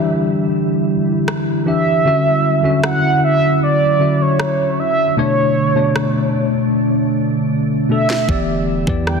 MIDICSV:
0, 0, Header, 1, 6, 480
1, 0, Start_track
1, 0, Tempo, 779221
1, 1265, Time_signature, 4, 2, 24, 8
1, 5667, End_track
2, 0, Start_track
2, 0, Title_t, "Soft synth lead"
2, 0, Program_c, 0, 80
2, 0, Note_on_c, 0, 76, 101
2, 311, Note_off_c, 0, 76, 0
2, 1029, Note_on_c, 0, 76, 109
2, 1723, Note_off_c, 0, 76, 0
2, 1754, Note_on_c, 0, 78, 101
2, 1973, Note_off_c, 0, 78, 0
2, 1995, Note_on_c, 0, 76, 110
2, 2214, Note_off_c, 0, 76, 0
2, 2235, Note_on_c, 0, 74, 96
2, 2597, Note_on_c, 0, 73, 91
2, 2606, Note_off_c, 0, 74, 0
2, 2950, Note_off_c, 0, 73, 0
2, 2954, Note_on_c, 0, 76, 94
2, 3173, Note_off_c, 0, 76, 0
2, 3197, Note_on_c, 0, 73, 93
2, 4127, Note_off_c, 0, 73, 0
2, 4867, Note_on_c, 0, 76, 112
2, 5322, Note_off_c, 0, 76, 0
2, 5592, Note_on_c, 0, 79, 97
2, 5667, Note_off_c, 0, 79, 0
2, 5667, End_track
3, 0, Start_track
3, 0, Title_t, "Tine electric piano"
3, 0, Program_c, 1, 4
3, 0, Control_c, 1, 64, 127
3, 0, Note_on_c, 1, 52, 72
3, 0, Note_on_c, 1, 62, 64
3, 0, Note_on_c, 1, 67, 63
3, 0, Note_on_c, 1, 76, 82
3, 568, Note_off_c, 1, 52, 0
3, 571, Note_off_c, 1, 62, 0
3, 573, Note_off_c, 1, 67, 0
3, 576, Note_off_c, 1, 76, 0
3, 1023, Note_on_c, 1, 52, 67
3, 1027, Note_on_c, 1, 62, 57
3, 1032, Note_on_c, 1, 67, 61
3, 1037, Note_on_c, 1, 76, 75
3, 1240, Note_off_c, 1, 52, 0
3, 1242, Note_off_c, 1, 62, 0
3, 1244, Note_off_c, 1, 67, 0
3, 1247, Note_off_c, 1, 76, 0
3, 1262, Note_on_c, 1, 50, 84
3, 1267, Note_on_c, 1, 61, 78
3, 1273, Control_c, 1, 64, 0
3, 1273, Note_on_c, 1, 66, 77
3, 1278, Note_on_c, 1, 76, 93
3, 1370, Control_c, 1, 64, 127
3, 1588, Note_off_c, 1, 50, 0
3, 1590, Note_off_c, 1, 61, 0
3, 1593, Note_off_c, 1, 66, 0
3, 1596, Note_off_c, 1, 76, 0
3, 1619, Note_on_c, 1, 50, 73
3, 1625, Note_on_c, 1, 61, 67
3, 1629, Note_on_c, 1, 66, 68
3, 1635, Note_on_c, 1, 76, 84
3, 2378, Note_off_c, 1, 50, 0
3, 2381, Note_off_c, 1, 61, 0
3, 2383, Note_off_c, 1, 66, 0
3, 2386, Note_off_c, 1, 76, 0
3, 2459, Note_on_c, 1, 50, 64
3, 2464, Note_on_c, 1, 61, 56
3, 2470, Note_on_c, 1, 66, 57
3, 2474, Note_on_c, 1, 76, 73
3, 3110, Note_off_c, 1, 50, 0
3, 3113, Note_off_c, 1, 61, 0
3, 3115, Note_off_c, 1, 66, 0
3, 3118, Note_off_c, 1, 76, 0
3, 3182, Note_on_c, 1, 47, 84
3, 3187, Note_on_c, 1, 57, 82
3, 3191, Note_on_c, 1, 62, 80
3, 3192, Control_c, 1, 64, 0
3, 3197, Note_on_c, 1, 73, 100
3, 3317, Control_c, 1, 64, 127
3, 3507, Note_off_c, 1, 47, 0
3, 3510, Note_off_c, 1, 57, 0
3, 3512, Note_off_c, 1, 62, 0
3, 3515, Note_off_c, 1, 73, 0
3, 3541, Note_on_c, 1, 47, 72
3, 3547, Note_on_c, 1, 57, 64
3, 3550, Note_on_c, 1, 62, 69
3, 3555, Note_on_c, 1, 73, 75
3, 4407, Note_off_c, 1, 47, 0
3, 4410, Note_off_c, 1, 57, 0
3, 4411, Note_off_c, 1, 62, 0
3, 4414, Note_off_c, 1, 73, 0
3, 4862, Note_on_c, 1, 47, 64
3, 4866, Note_on_c, 1, 57, 56
3, 4871, Note_on_c, 1, 62, 56
3, 4877, Note_on_c, 1, 69, 70
3, 5080, Note_off_c, 1, 47, 0
3, 5082, Note_off_c, 1, 57, 0
3, 5084, Note_off_c, 1, 62, 0
3, 5087, Note_off_c, 1, 69, 0
3, 5100, Note_on_c, 1, 52, 81
3, 5106, Note_on_c, 1, 59, 80
3, 5113, Control_c, 1, 64, 0
3, 5113, Note_on_c, 1, 67, 78
3, 5117, Note_on_c, 1, 74, 95
3, 5213, Control_c, 1, 64, 127
3, 5427, Note_off_c, 1, 52, 0
3, 5430, Note_off_c, 1, 59, 0
3, 5433, Note_off_c, 1, 67, 0
3, 5435, Note_off_c, 1, 74, 0
3, 5463, Note_on_c, 1, 52, 75
3, 5468, Note_on_c, 1, 59, 67
3, 5473, Note_on_c, 1, 67, 65
3, 5479, Note_on_c, 1, 74, 78
3, 5667, Note_off_c, 1, 52, 0
3, 5667, Note_off_c, 1, 59, 0
3, 5667, Note_off_c, 1, 67, 0
3, 5667, Note_off_c, 1, 74, 0
3, 5667, End_track
4, 0, Start_track
4, 0, Title_t, "Ambient pad"
4, 0, Program_c, 2, 92
4, 0, Note_on_c, 2, 50, 81
4, 0, Note_on_c, 2, 55, 72
4, 0, Note_on_c, 2, 64, 90
4, 1241, Note_off_c, 2, 50, 0
4, 1241, Note_off_c, 2, 55, 0
4, 1241, Note_off_c, 2, 64, 0
4, 1263, Note_on_c, 2, 50, 84
4, 1265, Note_on_c, 2, 64, 93
4, 1266, Note_on_c, 2, 54, 74
4, 3166, Note_off_c, 2, 54, 0
4, 3166, Note_off_c, 2, 64, 0
4, 3185, Note_on_c, 2, 57, 75
4, 3185, Note_on_c, 2, 62, 90
4, 5080, Note_off_c, 2, 50, 0
4, 5086, Note_off_c, 2, 57, 0
4, 5086, Note_off_c, 2, 62, 0
4, 5107, Note_on_c, 2, 55, 76
4, 5108, Note_on_c, 2, 50, 84
4, 5108, Note_on_c, 2, 64, 89
4, 5667, Note_off_c, 2, 50, 0
4, 5667, Note_off_c, 2, 55, 0
4, 5667, Note_off_c, 2, 64, 0
4, 5667, End_track
5, 0, Start_track
5, 0, Title_t, "808-style bass"
5, 0, Program_c, 3, 38
5, 5107, Note_on_c, 3, 28, 97
5, 5452, Note_off_c, 3, 28, 0
5, 5467, Note_on_c, 3, 40, 99
5, 5667, Note_off_c, 3, 40, 0
5, 5667, End_track
6, 0, Start_track
6, 0, Title_t, "Drums"
6, 788, Note_on_c, 9, 37, 106
6, 850, Note_off_c, 9, 37, 0
6, 1747, Note_on_c, 9, 37, 103
6, 1808, Note_off_c, 9, 37, 0
6, 2708, Note_on_c, 9, 37, 106
6, 2769, Note_off_c, 9, 37, 0
6, 3669, Note_on_c, 9, 37, 96
6, 3731, Note_off_c, 9, 37, 0
6, 4989, Note_on_c, 9, 38, 79
6, 5050, Note_off_c, 9, 38, 0
6, 5105, Note_on_c, 9, 36, 106
6, 5166, Note_off_c, 9, 36, 0
6, 5465, Note_on_c, 9, 36, 91
6, 5527, Note_off_c, 9, 36, 0
6, 5588, Note_on_c, 9, 37, 95
6, 5650, Note_off_c, 9, 37, 0
6, 5667, End_track
0, 0, End_of_file